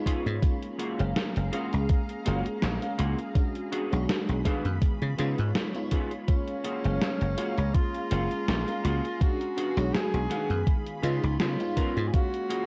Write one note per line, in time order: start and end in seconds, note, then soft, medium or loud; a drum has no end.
0.00 0.39 G#3 loud
0.00 0.39 B3 medium
0.00 0.39 D#4 medium
0.00 0.39 F4 loud
0.00 0.42 F4 medium
0.00 0.42 C#5 medium
0.00 0.40 B5 medium
0.06 0.26 B3 medium
0.06 0.26 C#4 medium
0.06 0.26 F4 medium
0.06 0.26 G#4 loud
0.06 kick medium
0.06 closed hi-hat loud
0.27 0.39 G#2 medium
0.27 closed hi-hat soft
0.42 0.94 G#3 medium
0.42 0.94 A#3 medium
0.42 0.95 C#4 medium
0.42 0.95 F4 medium
0.42 4.78 G#4 medium
0.42 3.33 F5 medium
0.42 3.33 A#5 medium
0.42 kick loud
0.42 closed hi-hat medium
0.63 closed hi-hat soft
0.79 0.99 A#3 medium
0.79 0.99 F4 medium
0.79 0.99 F#4 medium
0.79 0.99 G#4 medium
0.79 closed hi-hat loud
0.98 1.12 F#1 loud
0.98 1.48 G#3 medium
0.98 1.48 A#3 medium
0.98 1.49 C#4 medium
0.98 1.49 F5 loud
0.98 closed hi-hat soft
1.16 snare loud
1.16 closed hi-hat medium
1.36 1.49 F#1 medium
1.36 closed hi-hat soft
1.52 2.21 G#3 medium
1.52 1.72 A#3 medium
1.52 2.22 A#3 medium
1.52 2.22 C#4 medium
1.52 1.72 F4 medium
1.52 1.72 F#4 medium
1.52 1.72 G#4 loud
1.52 2.22 F5 loud
1.52 closed hi-hat loud
1.72 1.86 C#2 medium
1.72 closed hi-hat soft
1.89 kick loud
1.89 closed hi-hat medium
2.09 closed hi-hat soft
2.25 2.41 F#1 loud
2.25 2.77 G#3 loud
2.25 2.45 A#3 medium
2.25 2.77 A#3 medium
2.25 2.78 C#4 medium
2.25 2.45 F4 medium
2.25 2.46 F#4 medium
2.25 2.46 G#4 loud
2.25 2.78 F5 loud
2.25 closed hi-hat loud
2.46 muted slap bass stroke soft
2.46 closed hi-hat soft
2.62 2.78 A#1 loud
2.62 snare loud
2.62 closed hi-hat medium
2.81 3.31 G#3 medium
2.81 3.31 A#3 medium
2.81 3.32 C#4 medium
2.81 3.32 F5 loud
2.81 closed hi-hat soft
2.98 3.14 C#2 medium
2.98 3.18 A#3 medium
2.98 3.19 F4 medium
2.98 3.19 F#4 medium
2.98 3.19 G#4 loud
2.98 closed hi-hat loud
3.19 closed hi-hat soft
3.35 3.87 G#3 medium
3.35 3.87 C#4 medium
3.35 3.87 D4 medium
3.35 3.87 F#4 medium
3.35 6.25 B5 medium
3.35 kick loud
3.35 closed hi-hat medium
3.55 closed hi-hat soft
3.72 3.92 B3 medium
3.72 3.92 D4 medium
3.72 3.92 F#4 medium
3.72 3.92 G#4 medium
3.72 closed hi-hat medium
3.91 4.05 B1 loud
3.91 4.41 G#3 medium
3.91 4.41 D4 medium
3.91 4.42 F#4 loud
3.91 4.41 C#5 medium
3.91 closed hi-hat soft
4.09 snare loud
4.09 closed hi-hat medium
4.29 4.41 B1 medium
4.29 closed hi-hat soft
4.45 5.15 D#3 medium
4.45 5.14 G#3 medium
4.45 4.65 B3 medium
4.45 5.14 B3 medium
4.45 4.65 D4 medium
4.45 4.65 F#4 medium
4.45 4.65 G#4 loud
4.45 5.15 F5 loud
4.45 kick medium
4.45 snare soft
4.45 closed hi-hat medium
4.65 4.78 F#2 medium
4.65 closed hi-hat soft
4.82 6.27 F4 medium
4.82 6.27 C#5 medium
4.82 kick loud
4.82 closed hi-hat medium
5.02 5.15 C#3 medium
5.02 closed hi-hat soft
5.17 5.34 C#3 medium
5.17 5.70 G#3 loud
5.17 5.70 B3 medium
5.17 5.38 B3 medium
5.17 5.38 C#4 medium
5.17 5.70 D#4 medium
5.17 5.38 F4 medium
5.17 5.70 F4 loud
5.17 5.38 G#4 medium
5.17 closed hi-hat medium
5.38 5.51 G#2 medium
5.38 closed hi-hat soft
5.55 snare loud
5.55 closed hi-hat medium
5.74 6.24 G#3 medium
5.74 6.24 B3 medium
5.74 6.24 D#4 medium
5.74 6.25 F4 loud
5.74 closed hi-hat soft
5.91 6.11 B3 medium
5.91 6.11 C#4 medium
5.91 6.12 F4 medium
5.91 6.12 G#4 loud
5.91 kick medium
5.91 closed hi-hat medium
6.11 closed hi-hat soft
6.27 6.79 G#3 medium
6.27 6.80 A#3 medium
6.27 6.80 C#4 medium
6.27 7.76 C#4 loud
6.27 6.80 F4 medium
6.27 10.64 G#4 medium
6.27 9.18 F5 medium
6.27 9.18 A#5 medium
6.27 kick loud
6.27 closed hi-hat medium
6.48 closed hi-hat soft
6.64 6.84 A#3 medium
6.64 6.84 F4 medium
6.64 6.85 F#4 medium
6.64 6.85 G#4 loud
6.64 closed hi-hat medium
6.84 6.98 F#1 loud
6.84 7.34 G#3 medium
6.84 7.34 A#3 medium
6.84 7.34 C#4 medium
6.84 7.34 F5 loud
6.84 closed hi-hat soft
7.02 snare loud
7.02 closed hi-hat medium
7.21 7.34 F#1 medium
7.21 closed hi-hat soft
7.37 8.07 G#3 medium
7.37 7.58 A#3 medium
7.37 8.07 A#3 medium
7.37 8.07 C#4 medium
7.37 7.58 F4 medium
7.37 7.58 F#4 medium
7.37 7.58 G#4 loud
7.37 8.07 F5 loud
7.37 closed hi-hat medium
7.58 7.71 C#2 medium
7.58 closed hi-hat soft
7.74 9.22 F4 loud
7.74 kick loud
7.74 closed hi-hat medium
7.95 closed hi-hat soft
8.10 8.26 F#1 loud
8.10 8.62 G#3 loud
8.10 8.31 A#3 medium
8.10 8.63 A#3 medium
8.10 8.63 C#4 medium
8.10 8.31 F4 medium
8.10 8.31 F#4 medium
8.10 8.31 G#4 loud
8.10 8.63 F5 loud
8.10 closed hi-hat medium
8.31 muted slap bass stroke soft
8.31 closed hi-hat soft
8.48 8.63 A#1 loud
8.48 snare loud
8.48 closed hi-hat medium
8.66 9.16 G#3 medium
8.66 9.17 A#3 medium
8.66 9.17 C#4 medium
8.66 9.17 F5 loud
8.66 closed hi-hat soft
8.83 8.99 C#2 medium
8.83 9.04 A#3 medium
8.83 9.04 F4 medium
8.83 9.04 F#4 medium
8.83 9.04 G#4 loud
8.83 closed hi-hat medium
9.05 closed hi-hat soft
9.20 9.72 G#3 medium
9.20 9.72 C#4 medium
9.20 9.72 D4 medium
9.20 9.95 F#4 loud
9.20 9.73 F#4 medium
9.20 12.11 B5 medium
9.20 kick loud
9.20 closed hi-hat medium
9.41 closed hi-hat soft
9.57 9.77 B3 medium
9.57 9.77 D4 medium
9.57 9.77 F#4 medium
9.57 9.77 G#4 loud
9.57 closed hi-hat medium
9.76 9.90 B1 loud
9.76 10.26 G#3 medium
9.76 10.27 D4 medium
9.76 10.27 F#4 loud
9.76 10.27 C#5 medium
9.76 closed hi-hat soft
9.94 10.77 G#4 loud
9.94 snare loud
9.94 closed hi-hat medium
10.14 10.27 B1 medium
10.14 closed hi-hat soft
10.30 11.00 D#3 medium
10.30 10.99 G#3 medium
10.30 10.50 B3 medium
10.30 11.00 B3 medium
10.30 10.50 D4 medium
10.30 10.50 F#4 medium
10.30 10.50 G#4 loud
10.30 11.00 F5 loud
10.30 snare soft
10.30 closed hi-hat medium
10.50 10.63 F#2 loud
10.50 closed hi-hat soft
10.67 12.12 F4 medium
10.67 12.12 C#5 medium
10.67 kick loud
10.67 closed hi-hat medium
10.87 closed hi-hat soft
11.03 11.19 C#3 medium
11.03 11.55 G#3 loud
11.03 11.23 B3 medium
11.03 11.55 B3 medium
11.03 11.23 C#4 medium
11.03 11.56 D#4 medium
11.03 11.23 F4 medium
11.03 11.38 F4 loud
11.03 11.56 F4 loud
11.03 11.23 G#4 loud
11.03 closed hi-hat medium
11.24 11.36 C#2 medium
11.24 closed hi-hat soft
11.40 11.55 C#3 loud
11.40 12.09 F4 loud
11.40 snare loud
11.40 closed hi-hat medium
11.59 12.09 G#3 medium
11.59 12.09 B3 medium
11.59 12.10 D#4 medium
11.59 12.10 F4 loud
11.59 closed hi-hat soft
11.76 11.96 B3 medium
11.76 11.97 C#4 medium
11.76 11.97 F4 medium
11.76 11.97 A#4 loud
11.76 kick medium
11.76 closed hi-hat medium
11.97 12.10 G#2 medium
11.97 closed hi-hat soft
12.08 12.15 G#4 medium
12.13 12.65 G#3 medium
12.13 12.65 A#3 medium
12.13 12.66 C#4 medium
12.13 12.66 F#4 loud
12.13 12.66 G#4 medium
12.13 12.66 F5 medium
12.13 12.66 A#5 medium
12.13 kick loud
12.13 closed hi-hat medium
12.34 closed hi-hat soft
12.49 12.66 A#3 medium
12.49 12.66 F4 medium
12.49 12.66 F#4 medium
12.49 12.66 G#4 loud
12.49 closed hi-hat medium